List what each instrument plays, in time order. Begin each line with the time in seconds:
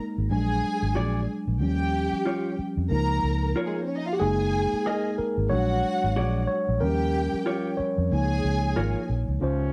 Already playing: tine electric piano G#3 A#3 D#4
0.18 fingered electric bass G#1
0.30 fingered electric bass A#1, tine electric piano F#3 G#3 D4, string section G#4 G#5
0.82 fingered electric bass G#1
0.95 fingered electric bass A#1, clean electric guitar F#4 G#4 D5
1.48 fingered electric bass A#1
1.61 fingered electric bass D#2, tine electric piano F3 G3 C#4, string section G4 G5
2.13 muted fingered electric bass stroke
2.25 clean electric guitar F4 G4 C#5
2.59 muted fingered electric bass stroke
2.77 fingered electric bass F2
2.90 fingered electric bass C#2, tine electric piano F3 A#3 D#4, string section A#4 A#5
3.23 fingered electric bass C#2
3.56 clean electric guitar F4 A#4 C#5
3.66 string section G#3 G#4
3.75 string section A#3 A#4
3.82 string section C4 C5
3.87 string section C#4 C#5
3.96 string section D#4 D#5
4.06 string section F4 F5
4.13 string section F#4 F#5, tine electric piano G4
4.20 fingered electric bass F#1, tine electric piano G#3 A#3 D#4 G#4, string section G#4 G#5
4.73 muted fingered electric bass stroke
4.86 clean electric guitar G#4 A#4 D#5
5.18 tine electric piano A#4, muted fingered electric bass stroke
5.38 fingered electric bass G#1
5.50 fingered electric bass A#1, tine electric piano F#3 G#3 D4 C#5, string section F#4 F#5
6.04 fingered electric bass G#1
6.16 fingered electric bass A#1, clean electric guitar F#4 G#4 D5
6.47 tine electric piano C#5
6.69 fingered electric bass A#1
6.80 fingered electric bass D#2, tine electric piano F3 G3 C#4 A#4, string section G4 G5
7.34 muted fingered electric bass stroke
7.46 clean electric guitar F4 G4 C#5
7.77 tine electric piano C#5, muted fingered electric bass stroke
7.98 fingered electric bass F2
8.12 fingered electric bass C#2, tine electric piano F3 A#3 D#4, string section G#4 G#5
8.44 fingered electric bass C#2
8.76 fingered electric bass G#1, clean electric guitar F4 A#4 C#5
9.10 fingered electric bass A#1
9.29 fingered electric bass C#2
9.40 fingered electric bass C#2, horn section G#2 F3 C#4, tine electric piano C#3 C#4 F4 C5